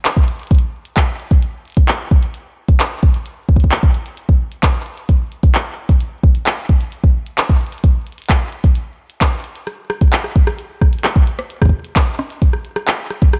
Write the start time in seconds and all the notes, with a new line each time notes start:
0.05 clap, closed hi-hat
0.17 kick
0.28 closed hi-hat
0.40 closed hi-hat
0.43 closed hi-hat
0.47 kick, closed hi-hat
0.51 closed hi-hat
0.55 closed hi-hat
0.59 closed hi-hat
0.85 closed hi-hat
0.97 kick, clap, closed hi-hat
1.20 closed hi-hat
1.31 kick, closed hi-hat
1.43 closed hi-hat
1.65 closed hi-hat
1.68 closed hi-hat
1.70 closed hi-hat
1.72 closed hi-hat
1.75 kick, closed hi-hat
1.77 closed hi-hat
1.88 clap, closed hi-hat
2.11 kick
2.23 closed hi-hat
2.34 closed hi-hat
2.69 kick, closed hi-hat
2.80 clap, closed hi-hat
3.03 kick, closed hi-hat
3.14 closed hi-hat
3.26 closed hi-hat
3.49 kick
3.56 kick, closed hi-hat
3.64 kick
3.72 clap
3.83 kick
3.94 closed hi-hat
4.06 closed hi-hat
4.17 closed hi-hat
4.29 kick
4.52 closed hi-hat
4.63 kick, clap, closed hi-hat
4.86 closed hi-hat
4.98 closed hi-hat
5.09 kick, closed hi-hat
5.32 closed hi-hat
5.43 kick, closed hi-hat
5.55 clap, closed hi-hat
5.89 kick, closed hi-hat
6.01 closed hi-hat
6.23 kick
6.35 closed hi-hat
6.46 clap, closed hi-hat
6.69 kick, closed hi-hat
6.81 closed hi-hat
6.92 closed hi-hat
7.04 kick
7.27 closed hi-hat
7.38 clap, closed hi-hat
7.49 kick
7.61 closed hi-hat
7.67 closed hi-hat
7.72 closed hi-hat
7.78 closed hi-hat
7.84 kick, closed hi-hat
8.07 closed hi-hat
8.12 closed hi-hat
8.18 closed hi-hat
8.22 closed hi-hat
8.24 closed hi-hat
8.26 clap, closed hi-hat
8.30 kick, closed hi-hat
8.52 closed hi-hat
8.64 kick, closed hi-hat
8.75 closed hi-hat
9.10 closed hi-hat
9.21 kick, clap, closed hi-hat
9.44 closed hi-hat
9.56 closed hi-hat
9.67 cross-stick, closed hi-hat
9.90 cross-stick
10.01 kick, closed hi-hat
10.13 clap, closed hi-hat
10.24 cross-stick
10.36 kick, closed hi-hat
10.47 cross-stick, closed hi-hat
10.59 closed hi-hat
10.81 kick, cross-stick
10.93 closed hi-hat
10.99 closed hi-hat
11.04 cross-stick, clap, closed hi-hat
11.10 closed hi-hat
11.16 kick
11.27 closed hi-hat
11.39 cross-stick, closed hi-hat
11.50 closed hi-hat
11.62 kick, cross-stick
11.65 kick
11.69 kick
11.85 closed hi-hat
11.96 kick, clap, closed hi-hat
12.19 cross-stick, closed hi-hat
12.30 closed hi-hat
12.42 kick, closed hi-hat
12.53 cross-stick
12.65 closed hi-hat
12.76 cross-stick, closed hi-hat
12.88 clap, closed hi-hat
13.10 cross-stick, closed hi-hat
13.22 kick, closed hi-hat
13.33 cross-stick, closed hi-hat